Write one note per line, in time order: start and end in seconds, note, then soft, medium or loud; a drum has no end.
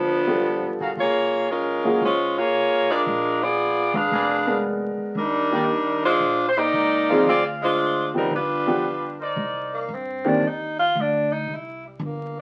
0.00 0.57 G1 medium
0.00 0.77 F3 medium
0.00 0.77 B3 medium
0.00 0.77 D4 medium
0.00 0.77 A4 medium
0.27 0.93 G3 medium
0.27 0.94 B3 soft
0.27 0.94 F4 soft
0.27 0.94 A4 medium
0.61 0.78 A1 medium
0.79 0.96 G1 medium
0.79 0.91 F#4 medium
0.79 0.91 G#4 medium
0.79 0.91 A#4 medium
0.79 0.91 F5 medium
0.96 1.97 F#1 medium
0.96 1.47 A#3 medium
0.96 1.46 F4 medium
0.96 1.47 G#4 medium
0.96 1.47 C#5 medium
1.51 2.02 G#3 medium
1.51 2.03 C#4 medium
1.51 2.02 F4 medium
1.51 2.03 A#4 medium
1.84 2.00 F#3 medium
1.84 2.00 A#3 medium
1.84 2.00 F4 medium
1.84 2.00 G#4 medium
2.01 3.02 C#2 medium
2.01 2.35 G#3 medium
2.01 2.35 C#4 medium
2.01 2.35 F4 medium
2.01 2.35 C5 medium
2.37 2.90 A#3 medium
2.37 2.90 F4 medium
2.37 2.89 G#4 medium
2.37 2.90 C#5 medium
2.88 3.42 G#3 medium
2.88 3.42 D4 medium
2.88 3.41 F4 medium
2.88 3.00 G#4 medium
2.88 3.01 A#4 medium
2.88 3.42 A#4 loud
2.88 3.01 B4 medium
2.88 3.01 D5 medium
3.06 3.90 A#1 medium
3.42 3.94 B3 medium
3.42 3.94 F4 medium
3.42 3.94 G#4 medium
3.42 3.94 D5 loud
3.93 4.10 G#1 medium
3.93 4.65 D4 medium
3.93 4.65 G#4 medium
3.93 4.65 B4 medium
3.93 4.65 F5 medium
4.11 4.95 F1 medium
4.11 4.35 G#4 medium
4.11 4.35 A#4 medium
4.11 4.36 B4 medium
4.11 4.35 D5 medium
4.47 5.13 G#3 medium
4.47 5.13 B3 soft
4.47 5.13 D4 soft
4.47 5.13 A#4 medium
4.97 muted upright bass stroke soft
5.15 6.17 D#2 medium
5.15 6.00 G3 medium
5.15 6.00 D4 medium
5.15 6.00 D#4 medium
5.15 6.00 A#4 medium
5.52 5.67 D#3 medium
5.52 5.68 A#3 soft
5.52 5.68 D4 soft
5.52 5.63 D#4 medium
5.52 5.63 G4 medium
5.52 5.68 G4 medium
5.52 5.63 A#4 medium
5.52 5.63 D5 medium
6.05 6.44 G#3 medium
6.05 6.45 D4 medium
6.05 6.44 F4 medium
6.05 6.45 C5 loud
6.20 6.69 A#1 medium
6.49 6.57 C5 medium
6.58 7.28 A#3 medium
6.58 7.27 D#4 medium
6.58 7.28 G4 medium
6.58 7.27 D5 loud
6.73 7.22 C#2 medium
7.09 7.25 F3 medium
7.09 7.25 C4 medium
7.09 7.26 D4 medium
7.09 7.76 F4 medium
7.09 7.76 G#4 medium
7.09 7.26 G#4 medium
7.09 7.76 C5 medium
7.09 7.76 F5 medium
7.25 8.27 D2 medium
7.25 7.44 C4 medium
7.25 7.44 F4 medium
7.25 7.44 G#4 medium
7.25 7.44 D5 loud
7.63 8.11 G#3 medium
7.63 8.11 D4 medium
7.63 8.11 F4 medium
7.63 8.12 C5 medium
8.14 8.30 F3 medium
8.14 8.32 G3 medium
8.14 8.30 B3 soft
8.14 8.32 C4 medium
8.14 8.30 D4 soft
8.14 8.32 D#4 medium
8.14 8.30 G4 medium
8.14 8.32 A#4 medium
8.31 9.33 G1 medium
8.31 9.17 G3 medium
8.31 9.17 D4 medium
8.31 9.17 B4 medium
8.35 9.17 F4 medium
8.67 8.83 F3 soft
8.67 8.83 B3 medium
8.67 8.83 D4 soft
8.67 8.83 G4 medium
9.19 9.86 D#4 medium
9.19 9.86 A#4 medium
9.19 9.86 C5 medium
9.19 9.86 D5 medium
9.36 9.88 C2 medium
9.74 9.96 A#3 medium
9.88 10.40 G2 medium
9.94 10.30 C4 medium
10.24 10.40 D#3 medium
10.24 10.40 A#3 medium
10.24 10.41 C4 medium
10.24 10.41 D4 medium
10.24 10.49 D4 medium
10.24 10.41 G4 medium
10.42 10.93 D#2 medium
10.47 10.79 D#4 medium
10.79 11.02 F4 loud
10.95 11.46 D2 medium
11.01 11.34 D4 medium
11.32 11.56 D#4 medium
11.47 11.98 C2 medium
11.54 11.86 E4 medium
11.87 12.03 G3 soft
11.99 12.41 G1 medium
12.05 12.38 A#3 medium